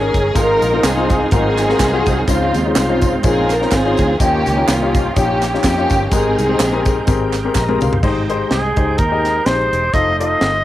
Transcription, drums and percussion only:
0.14 kick, closed hi-hat
0.36 kick, closed hi-hat, tambourine
0.62 closed hi-hat, tambourine
0.83 snare, clap, closed hi-hat, tambourine
1.10 kick, closed hi-hat, tambourine
1.31 kick, closed hi-hat, tambourine
1.58 snare, clap, closed hi-hat, tambourine
1.69 snare
1.79 kick, snare, clap, closed hi-hat, tambourine
2.06 kick, closed hi-hat, tambourine
2.28 kick, closed hi-hat, tambourine
2.54 closed hi-hat, tambourine
2.75 snare, clap, closed hi-hat, tambourine
3.01 kick, closed hi-hat, tambourine
3.23 kick, closed hi-hat, tambourine
3.50 snare, clap, closed hi-hat, tambourine
3.62 snare
3.71 kick, snare, clap, closed hi-hat, tambourine
3.97 kick, closed hi-hat, tambourine
4.20 kick, closed hi-hat, tambourine
4.46 closed hi-hat, tambourine
4.68 snare, clap, closed hi-hat, tambourine
4.95 kick, closed hi-hat, tambourine
5.16 kick, closed hi-hat, tambourine
5.42 snare, clap, closed hi-hat, tambourine
5.54 snare
5.64 kick, snare, clap, closed hi-hat, tambourine
5.90 kick, closed hi-hat, tambourine
6.11 kick, closed hi-hat, tambourine
6.38 closed hi-hat, tambourine
6.60 snare, clap, closed hi-hat, tambourine
6.85 kick, closed hi-hat, tambourine
7.07 kick, closed hi-hat, tambourine
7.33 snare, clap, closed hi-hat, tambourine
7.55 kick, snare, clap, tambourine
7.69 high tom
7.81 mid tom, tambourine
7.93 floor tom
8.03 kick, crash
8.30 closed hi-hat
8.51 snare, closed hi-hat
8.77 kick, closed hi-hat
8.98 kick, closed hi-hat
9.25 snare, closed hi-hat
9.46 snare, closed hi-hat
9.73 closed hi-hat
9.94 kick, closed hi-hat
10.21 closed hi-hat
10.41 snare, closed hi-hat

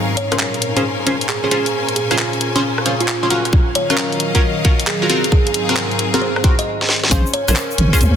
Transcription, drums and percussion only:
0.17 closed hi-hat
0.32 cross-stick, closed hi-hat
0.39 clap
0.54 closed hi-hat
0.62 closed hi-hat
0.77 closed hi-hat
1.07 closed hi-hat
1.21 closed hi-hat
1.29 clap, closed hi-hat
1.51 cross-stick, closed hi-hat
1.66 closed hi-hat
1.89 closed hi-hat
1.96 closed hi-hat
2.11 cross-stick, closed hi-hat
2.19 clap
2.33 closed hi-hat
2.41 closed hi-hat
2.56 closed hi-hat
2.78 cross-stick
2.86 closed hi-hat
3.00 closed hi-hat
3.08 clap, closed hi-hat
3.30 closed hi-hat
3.45 cross-stick, closed hi-hat
3.53 kick
3.75 closed hi-hat
3.90 cross-stick, closed hi-hat
3.98 clap
4.12 closed hi-hat
4.20 closed hi-hat
4.35 kick, closed hi-hat
4.65 kick, closed hi-hat
4.80 closed hi-hat
4.87 clap, closed hi-hat
5.10 cross-stick, closed hi-hat
5.24 closed hi-hat
5.32 kick
5.47 closed hi-hat
5.54 closed hi-hat
5.69 cross-stick, closed hi-hat
5.77 clap
5.91 closed hi-hat
5.99 closed hi-hat
6.14 closed hi-hat
6.36 cross-stick
6.44 kick, closed hi-hat
6.59 closed hi-hat
6.81 snare
6.89 snare
7.04 snare
7.11 kick, closed hi-hat, shaker
7.26 shaker
7.34 closed hi-hat
7.48 cross-stick, closed hi-hat, shaker
7.56 clap, closed hi-hat
7.71 shaker
7.78 closed hi-hat
7.93 kick, closed hi-hat, shaker
8.01 closed hi-hat, shaker

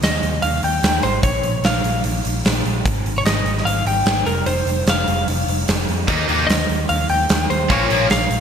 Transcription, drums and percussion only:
0.03 snare, open hi-hat
0.23 open hi-hat
0.42 open hi-hat
0.63 open hi-hat
0.83 snare, open hi-hat
1.03 open hi-hat
1.23 kick, open hi-hat
1.43 open hi-hat
1.64 snare, open hi-hat
1.84 open hi-hat
2.04 open hi-hat
2.25 open hi-hat
2.45 snare, open hi-hat
2.65 open hi-hat
2.86 kick, open hi-hat
3.06 open hi-hat
3.26 snare, open hi-hat
3.46 open hi-hat
3.58 snare
3.67 open hi-hat
3.87 open hi-hat
4.06 snare, open hi-hat
4.26 open hi-hat
4.46 open hi-hat
4.67 open hi-hat
4.87 snare, open hi-hat
5.08 open hi-hat
5.28 open hi-hat
5.48 open hi-hat
5.68 snare, open hi-hat
5.89 open hi-hat
6.08 kick, open hi-hat
6.29 open hi-hat
6.50 snare, open hi-hat
6.70 open hi-hat
6.89 open hi-hat
7.09 open hi-hat
7.29 snare, open hi-hat
7.50 open hi-hat
7.70 kick, open hi-hat
7.90 open hi-hat
8.10 snare, open hi-hat
8.31 open hi-hat

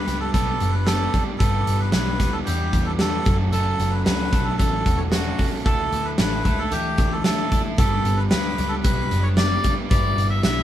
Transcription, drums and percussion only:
0.07 snare, closed hi-hat
0.34 kick, closed hi-hat
0.60 closed hi-hat
0.87 snare, closed hi-hat
1.14 kick, closed hi-hat
1.40 kick, closed hi-hat
1.67 closed hi-hat
1.92 snare, closed hi-hat
2.20 kick, snare, closed hi-hat
2.47 closed hi-hat
2.73 kick, closed hi-hat
2.99 snare, closed hi-hat
3.25 kick, closed hi-hat
3.53 closed hi-hat
3.80 closed hi-hat
4.06 snare, closed hi-hat
4.33 kick, closed hi-hat
4.59 kick, closed hi-hat
4.86 kick, closed hi-hat
5.12 snare, closed hi-hat
5.38 kick, open hi-hat
5.66 kick, closed hi-hat
5.92 closed hi-hat
6.18 snare, closed hi-hat
6.45 kick, closed hi-hat
6.72 closed hi-hat
6.98 kick, closed hi-hat
7.24 snare, closed hi-hat
7.52 kick, closed hi-hat
7.78 kick, closed hi-hat
8.05 closed hi-hat
8.31 snare, closed hi-hat
8.58 closed hi-hat
8.84 kick, closed hi-hat
9.11 closed hi-hat
9.37 snare, closed hi-hat
9.64 kick, closed hi-hat
9.91 kick, closed hi-hat
10.18 closed hi-hat
10.43 snare, closed hi-hat

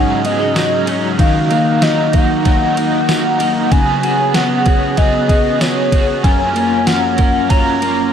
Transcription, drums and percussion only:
0.25 ride
0.56 snare, ride, tambourine
0.87 ride
1.19 kick, ride
1.51 ride
1.82 snare, ride, tambourine
2.13 kick, ride
2.45 kick, ride
2.77 ride
3.09 snare, ride, tambourine
3.40 ride
3.72 kick, ride
4.03 ride
4.34 snare, ride, tambourine
4.66 kick, ride
4.97 kick, ride
5.29 kick, ride
5.61 snare, ride, tambourine
5.92 kick, ride
6.24 kick, ride
6.56 ride
6.87 snare, ride, tambourine
7.18 kick, ride
7.50 kick, ride
7.82 ride

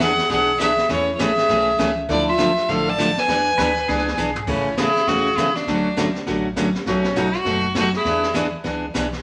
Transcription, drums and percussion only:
0.18 snare
0.30 brush sweep, kick, snare
0.59 kick, snare, hi-hat pedal
0.78 snare
0.89 brush sweep, kick, snare
1.19 kick, snare, hi-hat pedal
1.38 snare
1.49 brush sweep, kick, snare
1.79 kick, snare, hi-hat pedal
2.09 brush sweep, kick, snare
2.38 kick, snare, hi-hat pedal
2.57 snare
2.68 brush sweep, kick, snare
2.98 kick, snare, hi-hat pedal
3.17 snare
3.28 brush sweep, kick, snare
3.58 kick, snare, hi-hat pedal
3.77 snare
3.88 brush sweep, kick, snare
3.98 snare
4.08 snare
4.17 hi-hat pedal
4.36 floor tom
4.47 brush sweep, kick, snare, crash
4.77 kick, snare, hi-hat pedal
4.96 snare
5.07 brush sweep, kick, snare
5.37 kick, snare, hi-hat pedal
5.55 snare
5.67 brush sweep, kick, snare
5.97 kick, snare, hi-hat pedal
6.15 snare
6.26 brush sweep, kick, snare
6.56 kick, snare, hi-hat pedal
6.75 snare
6.86 brush sweep, kick, snare
7.04 snare
7.16 kick, snare, hi-hat pedal
7.33 snare
7.45 brush sweep, kick, snare
7.75 kick, snare, hi-hat pedal
7.93 snare
8.05 brush sweep, kick, snare
8.23 snare
8.34 kick, snare, hi-hat pedal
8.64 brush sweep, kick, snare
8.94 kick, snare, hi-hat pedal
9.13 snare

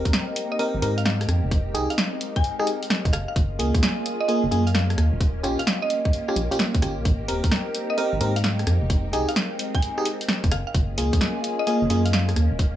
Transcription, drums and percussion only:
0.05 kick, closed hi-hat
0.13 snare, closed hi-hat
0.36 closed hi-hat
0.59 closed hi-hat
0.82 closed hi-hat
0.98 closed hi-hat
1.06 snare
1.21 cross-stick, closed hi-hat
1.29 cross-stick, closed hi-hat
1.51 kick, closed hi-hat
1.75 closed hi-hat
1.90 closed hi-hat
1.98 snare, closed hi-hat
2.21 closed hi-hat
2.36 kick
2.44 closed hi-hat
2.60 cross-stick
2.67 closed hi-hat
2.83 closed hi-hat
2.90 snare
3.05 kick, closed hi-hat
3.13 cross-stick, closed hi-hat
3.36 kick, closed hi-hat
3.60 closed hi-hat
3.75 kick, closed hi-hat
3.83 snare, closed hi-hat
4.06 closed hi-hat
4.29 closed hi-hat
4.52 closed hi-hat
4.67 closed hi-hat
4.75 snare
4.90 cross-stick, closed hi-hat
4.98 cross-stick, closed hi-hat
5.21 kick, closed hi-hat
5.44 cross-stick, closed hi-hat
5.59 closed hi-hat
5.67 snare, closed hi-hat
5.90 closed hi-hat
6.05 kick
6.13 closed hi-hat
6.29 cross-stick
6.36 closed hi-hat
6.52 closed hi-hat
6.59 snare
6.75 kick, closed hi-hat
6.82 cross-stick, closed hi-hat
7.05 kick, closed hi-hat
7.28 closed hi-hat
7.44 kick, closed hi-hat
7.52 snare, closed hi-hat
7.75 closed hi-hat
7.98 closed hi-hat
8.21 closed hi-hat
8.36 closed hi-hat
8.44 snare
8.59 cross-stick, closed hi-hat
8.67 cross-stick, closed hi-hat
8.90 kick, closed hi-hat
9.13 closed hi-hat
9.29 closed hi-hat
9.36 snare, closed hi-hat
9.59 closed hi-hat
9.75 kick
9.82 closed hi-hat
9.98 cross-stick
10.05 closed hi-hat
10.21 closed hi-hat
10.29 snare
10.44 kick, closed hi-hat
10.52 cross-stick, closed hi-hat
10.74 kick, closed hi-hat
10.98 closed hi-hat
11.13 kick, closed hi-hat
11.21 snare, closed hi-hat
11.44 closed hi-hat
11.67 closed hi-hat
11.90 closed hi-hat
12.06 closed hi-hat
12.13 snare
12.29 cross-stick, closed hi-hat
12.36 cross-stick, closed hi-hat
12.59 kick, closed hi-hat

